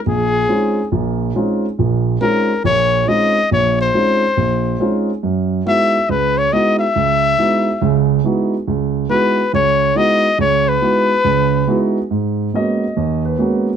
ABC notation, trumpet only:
X:1
M:4/4
L:1/8
Q:"Swing" 1/4=140
K:Gbmix
V:1 name="Trumpet"
A4 z4 | z2 B2 d2 e2 | d =c6 z | z2 f2 c d e f- |
f4- f z3 | z2 c2 d2 e2 | d c6 z | [K:G#m] z8 |]